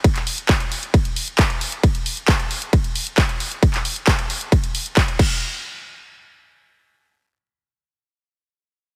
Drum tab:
CC |----------------|----------------|--------------x-|----------------|
RD |x---x---x---x---|x---x---x---x---|x---x---x---x---|----------------|
HH |xxoxxxoxxxoxxxox|xxoxxxoxxxoxxxox|xxoxxxoxxxoxxx--|----------------|
CP |-x--x-------x---|----x-------x---|-x--x-------x---|----------------|
BD |o---o---o---o---|o---o---o---o---|o---o---o---o-o-|----------------|

CC |----------------|
RD |----------------|
HH |----------------|
CP |----------------|
BD |----------------|